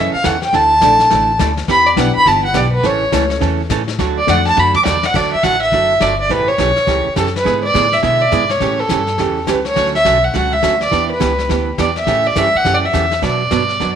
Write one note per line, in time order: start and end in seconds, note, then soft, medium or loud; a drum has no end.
0.00 0.12 F#2 medium
0.00 0.15 C#3 medium
0.00 0.15 E3 medium
0.00 0.16 A3 medium
0.00 0.16 C#4 medium
0.00 0.16 A4 medium
0.00 0.13 E5 medium
0.14 0.27 F5 medium
0.14 muted upright bass stroke soft
0.24 0.52 E2 medium
0.24 0.35 C#3 medium
0.24 0.35 E3 medium
0.24 0.35 A3 medium
0.24 0.36 C#4 medium
0.24 0.36 A4 medium
0.24 0.42 F#5 medium
0.24 kick soft
0.24 snare medium
0.24 hi-hat pedal medium
0.42 0.56 G5 loud
0.42 snare soft
0.53 0.81 D2 medium
0.53 0.73 D3 medium
0.53 0.73 A3 medium
0.53 0.74 D4 medium
0.53 0.74 E4 medium
0.53 0.74 A4 medium
0.53 1.40 A5 loud
0.53 brush sweep soft
0.53 kick soft
0.53 snare soft
0.81 1.10 A#1 medium
0.81 0.93 D3 medium
0.81 1.25 A3 medium
0.81 0.93 A3 medium
0.81 1.25 D4 medium
0.81 0.94 D4 medium
0.81 1.25 E4 medium
0.81 0.94 E4 medium
0.81 1.25 A4 medium
0.81 0.94 A4 medium
0.81 1.25 D5 medium
0.81 kick soft
0.81 snare medium
0.81 hi-hat pedal medium
0.99 snare soft
1.10 1.39 A1 loud
1.10 1.30 D3 medium
1.10 1.31 A3 medium
1.10 1.31 D4 medium
1.10 1.31 E4 medium
1.10 1.31 A4 medium
1.10 brush sweep medium
1.10 kick soft
1.10 snare medium
1.39 1.67 D2 loud
1.39 1.51 D3 medium
1.39 1.51 A3 medium
1.39 1.51 D4 medium
1.39 1.51 E4 medium
1.39 1.51 A4 medium
1.39 kick soft
1.39 snare medium
1.39 hi-hat pedal medium
1.57 snare soft
1.68 1.96 E2 medium
1.68 1.88 E3 medium
1.68 1.89 B3 medium
1.68 1.89 D4 medium
1.68 1.89 G4 medium
1.68 1.88 B5 loud
1.68 brush sweep soft
1.68 kick soft
1.68 snare medium
1.86 2.00 D5 medium
1.96 2.14 B1 loud
1.96 2.08 E3 medium
1.96 2.40 B3 medium
1.96 2.09 B3 medium
1.96 2.40 D4 medium
1.96 2.09 D4 medium
1.96 2.40 E4 medium
1.96 2.40 G4 medium
1.96 2.09 G4 medium
1.96 2.40 B4 medium
1.96 2.15 F#5 medium
1.96 kick soft
1.96 snare medium
1.96 hi-hat pedal medium
2.15 2.29 B5 loud
2.25 2.54 G1 medium
2.25 2.46 E3 medium
2.25 2.46 B3 medium
2.25 2.46 D4 medium
2.25 2.46 G4 medium
2.25 2.44 A5 loud
2.25 brush sweep soft
2.25 kick soft
2.25 snare soft
2.45 2.58 F#5 loud
2.54 2.83 B1 loud
2.54 2.66 E3 medium
2.54 2.66 B3 medium
2.54 2.66 D4 medium
2.54 2.66 G4 medium
2.54 2.72 D5 medium
2.54 kick soft
2.54 snare medium
2.54 hi-hat pedal medium
2.72 2.87 B4 loud
2.83 3.12 A1 medium
2.83 3.03 C#3 medium
2.83 3.03 E3 medium
2.83 3.04 A3 medium
2.83 3.04 C#4 medium
2.83 3.04 A4 medium
2.83 3.31 C#5 medium
2.83 brush sweep soft
2.83 kick soft
2.83 snare soft
3.12 3.40 C#2 medium
3.12 3.24 C#3 medium
3.12 3.24 E3 medium
3.12 3.55 A3 medium
3.12 3.24 A3 medium
3.12 3.56 C#4 medium
3.12 3.24 C#4 medium
3.12 3.56 E4 medium
3.12 3.56 A4 medium
3.12 3.24 A4 medium
3.12 3.56 C#5 medium
3.12 kick soft
3.12 snare medium
3.12 hi-hat pedal medium
3.30 snare soft
3.41 3.69 E2 medium
3.41 3.61 C#3 medium
3.41 3.61 E3 medium
3.41 3.61 A3 medium
3.41 3.61 C#4 medium
3.41 3.62 A4 medium
3.41 brush sweep soft
3.41 kick soft
3.41 snare soft
3.70 3.98 A2 medium
3.70 3.82 C#3 medium
3.70 3.82 E3 medium
3.70 3.82 A3 medium
3.70 3.82 C#4 medium
3.70 3.82 A4 medium
3.70 kick soft
3.70 snare medium
3.70 hi-hat pedal medium
3.88 snare soft
3.99 4.27 D2 medium
3.99 4.19 D3 medium
3.99 4.19 F#3 medium
3.99 4.19 A3 medium
3.99 4.19 D4 medium
3.99 4.20 F#4 medium
3.99 brush sweep soft
3.99 kick soft
3.99 snare soft
4.18 4.31 D5 medium
4.27 4.56 F2 medium
4.27 4.39 D3 medium
4.27 4.39 F#3 medium
4.27 4.70 A3 medium
4.27 4.39 A3 medium
4.27 4.71 D4 medium
4.27 4.39 D4 medium
4.27 4.71 F#4 medium
4.27 4.40 F#4 medium
4.27 4.71 A4 medium
4.27 4.71 D5 medium
4.27 4.46 F#5 loud
4.27 kick soft
4.27 snare medium
4.27 hi-hat pedal medium
4.46 4.60 A5 loud
4.46 snare soft
4.57 4.85 F#2 medium
4.57 4.77 D3 medium
4.57 4.77 F#3 medium
4.57 4.77 A3 medium
4.57 4.77 D4 medium
4.57 4.77 F#4 medium
4.57 4.75 B5 medium
4.57 floor tom medium
4.74 4.82 D6 loud
4.74 floor tom medium
4.85 5.14 E2 medium
4.85 4.96 D3 medium
4.85 4.97 F#3 medium
4.85 4.97 A3 medium
4.85 4.97 D4 medium
4.85 4.97 F#4 medium
4.85 5.07 D5 medium
4.85 snare medium
4.85 hi-hat pedal medium
5.03 5.17 F#5 loud
5.03 snare medium
5.14 5.31 D2 medium
5.14 5.34 D3 medium
5.14 5.35 F#3 medium
5.14 5.35 A3 medium
5.14 5.35 D4 medium
5.14 5.35 F#4 medium
5.14 5.32 D5 medium
5.14 brush sweep soft
5.14 kick medium
5.14 snare soft
5.14 crash medium
5.33 5.45 E5 medium
5.33 muted upright bass stroke soft
5.43 5.71 A1 medium
5.43 5.55 D3 medium
5.43 5.55 F#3 medium
5.43 5.55 A3 medium
5.43 5.55 D4 medium
5.43 5.55 F#4 medium
5.43 5.61 F#5 loud
5.43 kick soft
5.43 snare medium
5.43 hi-hat pedal soft
5.62 6.03 E5 loud
5.72 6.00 F#1 medium
5.72 5.92 D3 soft
5.72 5.93 F#3 medium
5.72 5.93 A3 medium
5.72 5.93 D4 medium
5.72 5.93 F#4 medium
5.72 brush sweep soft
5.72 kick soft
5.72 snare soft
6.00 6.29 G1 medium
6.00 6.13 D3 medium
6.00 6.13 F#3 medium
6.00 6.13 A3 medium
6.00 6.13 D4 medium
6.00 6.13 F#4 medium
6.00 6.19 D5 medium
6.00 kick soft
6.00 snare medium
6.00 hi-hat pedal soft
6.20 6.32 D5 medium
6.29 6.58 A1 medium
6.29 6.50 C#3 medium
6.29 6.50 E3 medium
6.29 6.50 A3 medium
6.29 6.51 C#4 medium
6.29 6.51 G4 medium
6.29 6.50 B4 loud
6.29 brush sweep soft
6.29 kick soft
6.29 snare soft
6.48 7.17 C#5 loud
6.58 6.75 B1 medium
6.58 6.70 C#3 medium
6.58 6.70 E3 medium
6.58 6.71 A3 medium
6.58 6.71 C#4 medium
6.58 6.71 G4 medium
6.58 kick soft
6.58 snare medium
6.58 hi-hat pedal medium
6.76 muted upright bass stroke soft
6.76 snare soft
6.87 7.04 C#2 medium
6.87 7.07 C#3 medium
6.87 7.08 E3 medium
6.87 7.08 A3 medium
6.87 7.08 C#4 medium
6.87 7.08 G4 medium
6.87 brush sweep soft
6.87 kick soft
6.87 snare soft
7.07 muted upright bass stroke soft
7.16 7.45 F#2 medium
7.16 7.28 C#3 medium
7.16 7.28 E3 medium
7.16 7.28 A3 medium
7.16 7.28 C#4 medium
7.16 7.28 G4 medium
7.16 7.34 A4 medium
7.16 kick soft
7.16 snare medium
7.16 hi-hat pedal medium
7.26 snare soft
7.36 7.62 B4 medium
7.36 snare soft
7.45 7.74 G#2 medium
7.45 7.65 D3 medium
7.45 7.65 G#3 medium
7.45 7.65 B3 medium
7.45 7.66 E4 medium
7.45 7.66 G#4 medium
7.45 brush sweep soft
7.45 kick soft
7.45 snare soft
7.64 7.94 D5 loud
7.74 8.02 A2 medium
7.74 7.85 D3 medium
7.74 7.86 G#3 medium
7.74 7.86 B3 medium
7.74 7.86 E4 medium
7.74 7.86 G#4 medium
7.74 kick soft
7.74 snare medium
7.74 hi-hat pedal soft
7.92 8.04 E5 loud
7.92 snare soft
8.03 8.31 B2 medium
8.03 8.23 D3 medium
8.03 8.23 G#3 medium
8.03 8.23 B3 medium
8.03 8.23 E4 medium
8.03 8.23 G#4 medium
8.03 8.23 E5 medium
8.03 brush sweep medium
8.03 kick soft
8.03 snare soft
8.22 8.52 D5 loud
8.31 8.60 G#2 medium
8.31 8.43 D3 medium
8.31 8.43 G#3 medium
8.31 8.43 B3 medium
8.31 8.43 E4 medium
8.31 8.44 G#4 medium
8.31 kick soft
8.31 snare medium
8.31 hi-hat pedal medium
8.49 8.81 C#5 medium
8.49 snare soft
8.60 8.89 A2 medium
8.60 8.81 C#3 medium
8.60 8.81 E3 medium
8.60 8.81 A3 medium
8.60 8.81 C#4 medium
8.60 8.81 G4 medium
8.60 brush sweep soft
8.60 kick soft
8.60 snare soft
8.79 9.37 A4 medium
8.89 9.18 G2 medium
8.89 9.01 C#3 medium
8.89 9.01 E3 medium
8.89 9.01 A3 medium
8.89 9.02 C#4 medium
8.89 9.02 G4 medium
8.89 kick soft
8.89 snare medium
8.89 hi-hat pedal medium
9.07 snare soft
9.18 9.47 E2 medium
9.18 9.39 C#3 medium
9.18 9.39 E3 medium
9.18 9.39 A3 medium
9.18 9.39 C#4 medium
9.18 9.39 G4 medium
9.18 brush sweep medium
9.18 kick soft
9.18 snare soft
9.47 9.75 C#2 medium
9.47 9.59 C#3 medium
9.47 9.59 E3 medium
9.47 9.59 A3 medium
9.47 9.59 C#4 medium
9.47 9.59 G4 medium
9.47 9.65 B4 medium
9.47 kick soft
9.47 snare medium
9.47 hi-hat pedal medium
9.65 9.93 C#5 medium
9.65 snare soft
9.76 10.04 D2 medium
9.76 9.96 D3 medium
9.76 9.96 F#3 medium
9.76 9.96 A3 medium
9.76 9.96 C#4 medium
9.76 9.97 F#4 medium
9.76 brush sweep medium
9.76 kick soft
9.76 snare soft
9.86 snare soft
9.95 10.25 E5 loud
9.95 snare soft
10.05 10.33 B1 medium
10.05 10.16 D3 medium
10.05 10.16 F#3 medium
10.05 10.17 A3 medium
10.05 10.17 C#4 medium
10.05 10.17 F#4 medium
10.05 kick soft
10.05 snare medium
10.05 hi-hat pedal medium
10.24 10.35 F#5 loud
10.34 10.62 C#2 medium
10.34 10.54 D3 medium
10.34 10.54 F#3 medium
10.34 10.54 A3 medium
10.34 10.55 C#4 medium
10.34 10.55 F#4 medium
10.34 10.55 F#5 medium
10.34 brush sweep medium
10.34 kick soft
10.34 snare soft
10.53 10.81 E5 medium
10.62 10.91 D2 medium
10.62 10.74 D3 medium
10.62 10.74 F#3 medium
10.62 10.74 A3 medium
10.62 10.74 C#4 medium
10.62 10.75 F#4 medium
10.62 kick soft
10.62 snare medium
10.62 hi-hat pedal medium
10.81 11.09 D5 medium
10.81 snare soft
10.91 11.20 E2 medium
10.91 11.11 E3 medium
10.91 11.12 B3 medium
10.91 11.12 D4 medium
10.91 11.12 G4 medium
10.91 brush sweep soft
10.91 kick soft
10.91 snare soft
11.11 11.64 B4 medium
11.20 11.49 C#2 medium
11.20 11.31 E3 medium
11.20 11.32 B3 medium
11.20 11.32 D4 medium
11.20 11.32 G4 medium
11.20 kick soft
11.20 snare medium
11.20 hi-hat pedal medium
11.39 snare soft
11.49 11.77 D2 medium
11.49 11.69 E3 medium
11.49 11.70 B3 medium
11.49 11.70 D4 medium
11.49 11.70 G4 medium
11.49 brush sweep soft
11.49 kick soft
11.49 snare soft
11.78 12.06 E2 medium
11.78 11.90 E3 medium
11.78 11.90 B3 medium
11.78 11.90 D4 medium
11.78 11.90 G4 medium
11.78 11.96 D5 medium
11.78 kick soft
11.78 snare medium
11.78 hi-hat pedal medium
11.96 12.28 E5 medium
11.96 snare soft
12.07 12.35 A2 medium
12.07 12.27 C#3 medium
12.07 12.27 E3 medium
12.07 12.27 A3 medium
12.07 12.27 C#4 medium
12.07 12.27 G4 medium
12.07 brush sweep soft
12.07 kick soft
12.07 snare soft
12.26 12.40 D5 medium
12.36 12.52 G2 medium
12.36 12.47 C#3 medium
12.36 12.47 E3 medium
12.36 12.47 A3 medium
12.36 12.48 C#4 medium
12.36 12.48 G4 medium
12.36 12.58 E5 loud
12.36 kick soft
12.36 snare medium
12.36 hi-hat pedal medium
12.55 12.76 F#5 loud
12.55 muted upright bass stroke soft
12.64 12.93 F#2 medium
12.64 12.85 C#3 medium
12.64 12.85 E3 medium
12.64 12.85 A3 medium
12.64 12.85 C#4 medium
12.64 12.85 G4 medium
12.64 brush sweep soft
12.64 kick soft
12.64 snare soft
12.74 12.87 D5 medium
12.85 13.24 E5 medium
12.93 13.22 E2 medium
12.93 13.05 C#3 medium
12.93 13.05 E3 medium
12.93 13.05 A3 medium
12.93 13.05 C#4 medium
12.93 13.05 G4 medium
12.93 kick soft
12.93 snare medium
12.93 hi-hat pedal soft
13.11 snare soft
13.22 13.42 B2 medium
13.22 13.50 B2 medium
13.22 13.42 F#3 medium
13.22 13.42 B3 medium
13.22 13.42 D4 medium
13.22 13.43 F#4 medium
13.22 13.95 D5 loud
13.22 brush sweep soft
13.22 kick soft
13.22 snare soft
13.51 13.79 G2 medium
13.51 13.62 B2 medium
13.51 13.62 F#3 medium
13.51 13.62 B3 medium
13.51 13.63 D4 medium
13.51 13.63 F#4 medium
13.51 kick soft
13.51 snare medium
13.51 hi-hat pedal soft
13.69 snare soft
13.80 13.95 F#2 medium
13.80 13.95 B2 medium
13.80 13.95 F#3 medium
13.80 13.95 B3 medium
13.80 13.95 D4 medium
13.80 13.95 F#4 medium
13.80 brush sweep soft
13.80 kick soft
13.80 snare soft